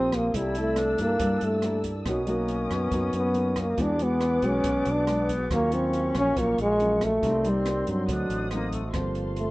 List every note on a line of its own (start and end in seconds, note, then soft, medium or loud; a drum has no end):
0.00 0.30 A#1 medium
0.00 0.32 A#2 medium
0.00 0.32 A#3 medium
0.00 0.17 C4 loud
0.00 0.33 C4 medium
0.00 0.29 F4 medium
0.00 0.30 G4 soft
0.00 0.32 G4 medium
0.00 0.31 A#4 soft
0.00 0.32 C5 medium
0.00 0.31 G5 medium
0.00 0.29 C6 medium
0.00 0.32 D#6 medium
0.12 0.39 A#3 medium
0.12 kick soft
0.12 cross-stick medium
0.12 closed hi-hat soft
0.32 0.94 C2 medium
0.32 1.59 E4 soft
0.32 0.79 E4 medium
0.32 1.60 A4 soft
0.32 2.04 D5 medium
0.32 2.04 A5 medium
0.32 2.04 E6 medium
0.32 kick medium
0.32 closed hi-hat medium
0.36 1.19 C3 medium
0.36 0.57 G3 medium
0.36 0.53 A#3 medium
0.36 0.53 E4 medium
0.36 0.53 A4 medium
0.36 1.62 D5 medium
0.55 0.96 E4 medium
0.55 0.96 A4 medium
0.55 closed hi-hat soft
0.59 0.97 A3 medium
0.76 1.85 D4 medium
0.76 cross-stick medium
0.76 closed hi-hat soft
0.98 1.19 G2 medium
0.98 1.61 A#3 medium
0.98 1.46 A#3 medium
0.98 1.61 E4 soft
0.98 1.61 A4 medium
0.98 kick soft
0.98 closed hi-hat soft
1.19 1.40 G2 medium
1.19 2.05 G3 medium
1.19 kick medium
1.19 closed hi-hat medium
1.41 2.02 G2 medium
1.41 1.86 A3 medium
1.41 closed hi-hat soft
1.62 1.93 A#3 medium
1.62 2.06 E4 soft
1.62 1.93 E4 medium
1.62 2.07 A4 soft
1.62 1.93 A4 medium
1.62 2.04 A#4 soft
1.62 cross-stick soft
1.62 closed hi-hat soft
1.66 2.08 D5 soft
1.84 kick soft
1.84 closed hi-hat soft
2.04 2.66 B1 medium
2.04 2.91 B2 soft
2.04 2.20 A#3 soft
2.04 3.71 C#4 loud
2.04 2.20 D#4 soft
2.04 3.73 F#4 soft
2.04 3.74 A#4 soft
2.04 3.76 A#4 medium
2.04 3.76 C#5 soft
2.04 3.76 D#6 medium
2.04 kick medium
2.04 cross-stick medium
2.04 closed hi-hat soft
2.08 2.32 F#3 medium
2.08 2.20 F#4 medium
2.08 3.76 D#5 medium
2.27 2.89 A#3 medium
2.27 2.75 A#3 medium
2.27 2.89 D#4 medium
2.27 2.89 F#4 medium
2.27 closed hi-hat soft
2.48 closed hi-hat soft
2.70 2.91 F#2 medium
2.70 3.15 B3 medium
2.70 kick soft
2.70 cross-stick medium
2.70 closed hi-hat soft
2.91 3.12 F#2 medium
2.91 3.77 F#3 medium
2.91 3.32 A#3 soft
2.91 3.32 D#4 medium
2.91 3.33 F#4 medium
2.91 kick medium
2.91 closed hi-hat medium
3.13 3.74 F#2 medium
3.13 3.62 B3 medium
3.13 closed hi-hat soft
3.34 3.64 A#3 medium
3.34 3.64 D#4 medium
3.34 3.64 F#4 medium
3.34 closed hi-hat soft
3.56 kick soft
3.56 cross-stick medium
3.56 closed hi-hat soft
3.61 3.83 A#3 medium
3.70 3.80 A#3 medium
3.75 4.38 E2 loud
3.75 4.62 E3 medium
3.75 5.07 B3 medium
3.75 5.45 F#4 medium
3.75 5.48 G#4 medium
3.75 5.46 G#4 soft
3.75 5.48 F#5 medium
3.75 5.48 D6 medium
3.75 kick medium
3.75 closed hi-hat medium
3.79 3.91 G#3 soft
3.79 3.91 D4 soft
3.79 4.05 D4 loud
3.79 3.92 F#4 medium
3.79 5.47 B4 soft
3.79 5.48 D6 medium
3.99 4.39 G#3 medium
3.99 4.40 D4 medium
3.99 4.39 F#4 medium
3.99 closed hi-hat soft
4.03 4.49 B3 medium
4.21 cross-stick medium
4.21 closed hi-hat soft
4.42 4.63 B1 medium
4.42 5.04 G#3 medium
4.42 5.04 F#4 medium
4.42 kick soft
4.42 closed hi-hat soft
4.48 4.93 C#4 loud
4.64 4.84 B1 medium
4.64 5.48 B2 medium
4.64 kick medium
4.64 closed hi-hat medium
4.85 5.47 B1 medium
4.85 closed hi-hat soft
4.92 5.32 D4 loud
5.07 5.36 G#3 medium
5.07 5.53 B3 medium
5.07 5.36 D4 soft
5.07 5.36 F#4 medium
5.07 cross-stick medium
5.07 closed hi-hat soft
5.29 kick soft
5.29 closed hi-hat soft
5.48 6.11 D#2 medium
5.48 6.34 D#3 soft
5.48 5.68 F#3 medium
5.48 5.69 C#4 medium
5.48 6.96 C#4 medium
5.48 7.18 F4 medium
5.48 5.69 F4 medium
5.48 7.18 F#4 soft
5.48 7.19 A#4 medium
5.48 7.20 F5 medium
5.48 7.21 C#6 medium
5.48 kick medium
5.48 cross-stick medium
5.48 closed hi-hat medium
5.53 5.76 A#3 medium
5.53 7.20 C#6 medium
5.72 6.33 F#3 medium
5.72 6.16 C4 medium
5.72 6.33 F4 medium
5.72 closed hi-hat soft
5.93 closed hi-hat soft
6.15 6.35 A#1 loud
6.15 6.41 C#4 loud
6.15 kick soft
6.15 cross-stick medium
6.15 closed hi-hat soft
6.37 6.57 A#1 medium
6.37 7.20 A#2 medium
6.37 6.64 F#3 medium
6.37 6.59 A#3 loud
6.37 6.64 C#4 soft
6.37 6.65 F4 medium
6.37 kick medium
6.37 closed hi-hat soft
6.58 7.19 A#1 medium
6.58 7.06 G#3 loud
6.58 closed hi-hat soft
6.80 7.09 F#3 medium
6.80 7.09 C#4 medium
6.80 7.09 F4 medium
6.80 closed hi-hat soft
7.01 7.51 A3 medium
7.01 kick soft
7.01 cross-stick medium
7.01 closed hi-hat soft
7.20 7.83 C2 medium
7.20 8.07 C3 medium
7.20 7.41 G3 soft
7.20 8.05 C4 medium
7.20 8.05 D#4 soft
7.20 8.07 G4 soft
7.20 8.08 A#4 medium
7.20 8.08 C6 medium
7.20 kick medium
7.20 closed hi-hat soft
7.24 7.41 A#3 medium
7.24 7.41 D#4 medium
7.24 8.08 A#4 soft
7.24 8.09 D5 medium
7.44 7.84 G3 medium
7.44 7.84 A#3 medium
7.44 7.84 D#4 medium
7.44 closed hi-hat soft
7.49 7.93 G3 medium
7.66 cross-stick medium
7.66 closed hi-hat soft
7.87 8.10 G2 loud
7.87 8.49 F#3 medium
7.87 8.49 C4 medium
7.87 kick soft
7.87 closed hi-hat soft
7.91 8.54 F#3 medium
8.06 8.28 D2 medium
8.06 8.93 D3 soft
8.06 8.49 D4 medium
8.06 8.92 F#4 soft
8.06 8.91 A4 soft
8.06 8.94 C5 medium
8.06 8.93 C5 soft
8.06 8.94 F#5 medium
8.06 8.94 D#6 medium
8.06 kick medium
8.06 closed hi-hat medium
8.12 8.94 D#5 soft
8.30 8.90 A1 medium
8.30 closed hi-hat soft
8.51 8.81 F#3 medium
8.51 8.72 A#3 medium
8.51 8.81 C4 medium
8.51 8.81 D#4 medium
8.51 cross-stick soft
8.51 closed hi-hat soft
8.72 8.93 A3 medium
8.72 kick soft
8.72 closed hi-hat soft
8.91 9.51 G1 medium
8.91 9.51 F4 medium
8.91 9.51 G4 medium
8.91 9.51 A4 soft
8.91 9.51 A5 medium
8.91 9.51 C6 medium
8.91 kick medium
8.91 cross-stick medium
8.91 closed hi-hat soft
8.95 9.51 G2 medium
8.95 9.51 F3 medium
8.95 9.51 A#3 medium
8.95 9.51 C4 medium
8.95 9.51 C5 medium
8.95 9.51 F5 medium
9.15 closed hi-hat soft
9.36 9.51 A3 medium
9.36 closed hi-hat soft